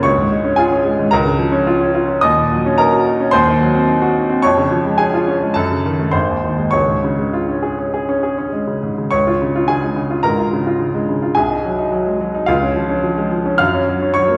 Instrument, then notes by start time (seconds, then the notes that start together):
grand piano
0.03 C#2 C#5 C#6
0.18 G#2
0.32 G#3
0.44 C#4
0.56 F4 G#4 G#5
0.72 C#4
0.85 G#3
0.99 G#2
1.11 C#2 A#4 A#5
1.26 C#3
1.38 F3
1.52 C#4
1.67 F4
1.81 C#4
1.94 F4
2.08 C#4
2.21 D#2 D#5 D#6
2.37 A#2
2.52 F#3
2.66 C#4
2.78 D#4 A#4 A#5
2.93 F#4
3.07 D#4
3.20 C#4
3.31 D#2 C5 C6
3.47 D#3
3.61 F#3
3.74 C4
3.88 D#4
4.02 F#4
4.16 D#4
4.30 C4
4.42 F2 C#5 C#6
4.57 C#3
4.71 F3
4.85 G#3
4.98 C#4 G#4 G#5
5.14 F4
5.28 C#4
5.43 G#3
5.54 F#2 A4 A5
5.71 C#3
5.86 D#3
6.00 A3
6.11 G#1 C5 C6
6.29 D#2
6.44 D#3
6.58 G#3
6.71 C#2 C#5 C#6
6.88 G#2
7.04 C#3
7.18 G#3
7.33 F4
7.49 C#4
7.63 G#4
7.78 C#4
7.94 G#4
8.09 C#4
8.23 G#4
8.38 C#4
8.53 G#3
8.67 C#3
8.83 G#2
8.98 C#3
9.11 C#2 C#5 C#6
9.27 F4
9.42 C#3
9.55 F4
9.68 C#3 G#4 G#5
9.84 G#3
9.96 C#3
10.10 F4
10.23 G#2 A#4 A#5
10.38 F4
10.53 C#3
10.67 F4
10.79 C#3
10.94 G#3
11.09 C#3
11.22 F4
11.35 C2 G#4 G#5
11.51 D#4
11.65 F#3
11.79 D#4
11.92 F#3
12.06 G#3
12.21 F#3
12.35 D#4
12.46 C#2 F4 F5
12.63 C#4
12.77 F3
12.89 C#4
13.03 F3
13.18 G#3
13.31 F3
13.46 C#4
13.58 F#2 F5 F6
13.74 C#4
13.89 F#3
14.02 C#4
14.14 F#3 C#5 C#6
14.28 A#3